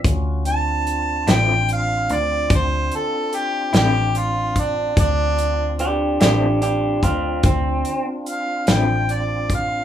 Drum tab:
HH |xxxxxxxxxxxx|xxxxxxxxxxxx|
SD |---o-----o--|---o-----o--|
BD |o-----o----o|o----oo----o|